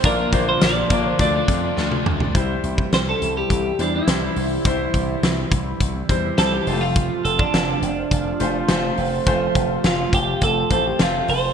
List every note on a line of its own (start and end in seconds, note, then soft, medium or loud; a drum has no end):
0.03 0.25 A#1 loud
0.03 0.90 A#2 medium
0.03 2.32 D3 medium
0.03 2.32 F3 medium
0.03 0.91 F3 medium
0.03 0.23 A#3 medium
0.03 1.18 A#3 medium
0.03 0.88 A#3 medium
0.03 0.23 D4 medium
0.03 1.18 F4 medium
0.03 0.24 F4 medium
0.03 0.48 A#4 medium
0.03 0.24 D5 medium
0.03 kick loud
0.03 closed hi-hat loud
0.32 0.53 A#1 loud
0.32 0.72 A#3 medium
0.32 0.72 D4 medium
0.32 0.72 F4 medium
0.32 0.72 C5 medium
0.32 kick medium
0.32 closed hi-hat medium
0.49 0.63 C5 medium
0.61 0.83 A#1 loud
0.61 1.08 D5 loud
0.61 snare loud
0.61 closed hi-hat medium
0.61 tambourine medium
0.90 1.11 A#1 loud
0.90 1.19 F3 soft
0.90 1.19 A#3 medium
0.90 1.18 D4 medium
0.90 1.18 F4 medium
0.90 1.19 D5 medium
0.90 kick loud
0.90 closed hi-hat medium
1.08 1.20 C5 loud
1.19 1.40 D2 loud
1.19 1.75 D3 medium
1.19 2.11 A3 medium
1.19 2.34 A3 medium
1.19 1.77 A3 medium
1.19 2.12 D4 medium
1.19 1.79 D4 medium
1.19 2.34 F4 medium
1.19 2.12 F4 medium
1.19 2.12 D5 medium
1.19 2.02 D5 medium
1.19 kick medium
1.19 closed hi-hat medium
1.48 1.69 F2 medium
1.48 kick loud
1.48 closed hi-hat medium
1.76 1.98 D2 medium
1.76 2.34 D3 medium
1.76 2.35 A3 medium
1.76 2.36 D4 medium
1.76 snare medium
1.92 high tom medium
2.06 2.26 D2 medium
2.06 mid tom loud
2.20 floor tom medium
2.34 2.56 C2 medium
2.34 11.53 C3 medium
2.34 6.63 E3 medium
2.34 3.13 G3 medium
2.34 6.63 G3 medium
2.34 3.14 C4 medium
2.34 6.63 E4 medium
2.34 3.14 E4 medium
2.34 3.14 C5 medium
2.34 kick loud
2.34 closed hi-hat medium
2.64 2.84 C2 medium
2.64 closed hi-hat medium
2.78 kick medium
2.92 3.13 C2 medium
2.92 2.99 C5 medium
2.92 snare loud
2.92 closed hi-hat medium
3.09 3.37 A4 medium
3.22 3.42 C2 medium
3.22 closed hi-hat medium
3.37 3.81 G4 medium
3.50 3.71 C2 medium
3.50 kick medium
3.50 closed hi-hat medium
3.79 3.99 E2 medium
3.79 3.99 G3 medium
3.79 3.99 C4 medium
3.79 3.95 D4 medium
3.79 3.99 E4 medium
3.79 3.99 C5 medium
3.79 closed hi-hat medium
3.95 5.34 E4 medium
4.07 4.28 C2 medium
4.07 4.47 G3 medium
4.07 4.47 C4 medium
4.07 4.47 E4 medium
4.07 4.48 C5 medium
4.07 snare loud
4.07 closed hi-hat medium
4.36 4.57 C2 medium
4.36 open hi-hat medium
4.65 4.86 C2 medium
4.65 5.44 G3 medium
4.65 5.44 C4 medium
4.65 5.45 E4 medium
4.65 5.45 C5 loud
4.65 kick loud
4.65 closed hi-hat medium
4.94 5.15 C2 medium
4.94 kick medium
4.94 closed hi-hat medium
5.23 5.44 C2 loud
5.23 snare loud
5.23 closed hi-hat medium
5.52 5.72 C2 medium
5.52 kick loud
5.52 closed hi-hat medium
5.80 6.01 C2 medium
5.80 kick medium
5.80 closed hi-hat medium
6.09 6.30 E2 medium
6.09 6.29 G3 medium
6.09 6.29 C4 medium
6.09 6.29 E4 medium
6.09 6.29 C5 medium
6.09 kick medium
6.09 closed hi-hat medium
6.38 6.59 C2 medium
6.38 6.67 G3 medium
6.38 6.65 C4 medium
6.38 6.67 E4 medium
6.38 6.54 A4 loud
6.38 6.66 C5 medium
6.38 snare loud
6.38 closed hi-hat medium
6.54 6.83 G4 medium
6.66 7.08 F1 medium
6.66 11.53 F3 medium
6.66 6.73 G#3 medium
6.66 11.53 A3 medium
6.66 7.59 C4 medium
6.66 11.53 F4 medium
6.66 7.60 F4 medium
6.66 7.60 C5 medium
6.66 open hi-hat medium
6.73 7.62 A3 medium
6.81 7.22 F4 medium
6.96 kick loud
6.96 closed hi-hat medium
7.25 7.45 F1 loud
7.25 7.40 A4 medium
7.25 closed hi-hat medium
7.39 8.79 D4 medium
7.39 kick medium
7.53 7.74 F1 loud
7.53 snare loud
7.53 closed hi-hat medium
7.82 8.03 F1 medium
7.82 closed hi-hat medium
8.11 8.32 F1 loud
8.11 kick medium
8.11 closed hi-hat medium
8.40 8.61 F1 medium
8.40 8.60 A3 medium
8.40 8.60 C4 medium
8.40 8.60 F4 medium
8.40 8.60 C5 medium
8.40 closed hi-hat medium
8.68 8.90 F1 medium
8.68 9.08 A3 medium
8.68 9.08 C4 medium
8.68 9.09 F4 medium
8.68 9.09 C5 loud
8.68 snare loud
8.68 closed hi-hat medium
8.98 9.19 F1 medium
8.98 open hi-hat medium
9.26 9.47 F1 medium
9.26 10.05 A3 medium
9.26 10.06 C4 medium
9.26 10.06 F4 medium
9.26 10.06 C5 loud
9.26 kick loud
9.26 closed hi-hat medium
9.55 9.76 F1 medium
9.55 kick medium
9.55 closed hi-hat medium
9.84 10.05 F1 medium
9.84 10.15 F4 medium
9.84 snare loud
9.84 closed hi-hat medium
10.13 10.34 F1 medium
10.13 10.41 G4 medium
10.13 kick loud
10.13 closed hi-hat medium
10.41 10.63 F1 medium
10.41 10.70 A4 medium
10.41 kick medium
10.41 closed hi-hat medium
10.70 10.92 A1 medium
10.70 10.90 A3 medium
10.70 10.91 C4 medium
10.70 10.91 F4 medium
10.70 10.86 A4 medium
10.70 10.91 C5 medium
10.70 kick medium
10.70 closed hi-hat medium
10.86 11.01 G4 medium
10.99 11.21 F1 loud
10.99 11.39 A3 medium
10.99 11.39 C4 medium
10.99 11.39 F4 medium
10.99 11.30 F4 medium
10.99 11.39 C5 medium
10.99 snare loud
10.99 closed hi-hat medium
11.28 11.49 F1 medium
11.28 11.53 C5 loud
11.28 open hi-hat medium